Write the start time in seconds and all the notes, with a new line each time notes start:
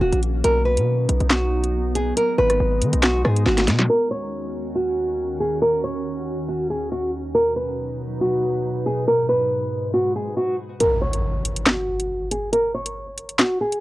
Already playing: D#3 A#3 C#4 F#4
0.01 D#1 F#4
0.12 A#1, closed hi-hat
0.23 closed hi-hat
0.44 B1 B3 A#4, closed hi-hat
0.65 B4
0.77 B2, closed hi-hat
1.09 B1, closed hi-hat
1.20 B1, closed hi-hat
1.30 F#4, snare, clap, closed hi-hat
1.64 closed hi-hat
1.95 G#4, closed hi-hat
2.17 A#4, closed hi-hat
2.38 G#1 B4
2.50 cross-stick, closed hi-hat
2.60 G#1
2.82 D#3, closed hi-hat
2.93 B1, closed hi-hat
3.03 F#4, snare, clap, closed hi-hat
3.25 G#2 G#4, cross-stick
3.36 closed hi-hat
3.46 G#1 F#4, snare
3.58 snare, closed hi-hat
3.68 B2, snare, closed hi-hat
3.79 snare
3.90 D#2 D#3 C#4 F#4 A#4
4.11 C#5
4.75 F#4
5.40 G#4
5.62 A#4
5.84 C#5
6.48 F#4
6.70 G#4
6.92 F#4
7.35 D#4 A#4 B4
7.56 B4
8.21 F#4
8.86 G#4
9.08 A#4
9.29 B4
9.94 F#4
10.16 G#4
10.37 F#4
10.80 A#4, closed hi-hat, impact
11.02 C#5
11.13 closed hi-hat
11.45 closed hi-hat
11.56 closed hi-hat
11.66 F#4, snare, clap, closed hi-hat
12.00 closed hi-hat
12.31 G#4, closed hi-hat
12.53 A#4, closed hi-hat
12.74 C#5
12.86 closed hi-hat
13.18 closed hi-hat
13.29 closed hi-hat
13.39 F#4, snare, clap, closed hi-hat
13.61 G#4
13.72 closed hi-hat